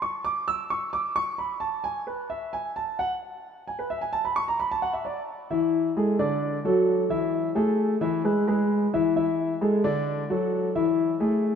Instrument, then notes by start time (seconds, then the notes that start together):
grand piano
0.02 C#6
0.25 D6
0.48 E6
0.70 C#6
0.93 D6
1.16 C#6
1.38 B5
1.60 A5
1.84 G#5
2.07 B4
2.30 E5
2.53 G#5
2.76 A5
2.99 F#5
3.67 G#5
3.79 B4
3.90 E5
4.01 G#5
4.13 A5
4.25 B5
4.36 C#6
4.48 A#5
4.60 B5
4.71 A5
4.82 F#5
4.93 E5
5.05 D5
5.50 E3 E4 E5
5.97 G#3 G#4 A4
6.19 D3 D4 D5
6.65 F#3 F#4 A4
7.10 E3 E4 E5
7.55 A3 G#4 A4
8.01 E3 E4 E5
8.24 G#3 G#4 B4
8.47 G#3 G#4 B4
8.93 E3 E4 E5
9.16 E3 E4 E5
9.61 G#3 G#4 A4
9.84 D3 D4 D5
10.30 F#3 F#4 A4
10.75 E3 E4 E5
11.20 A3 G#4 A4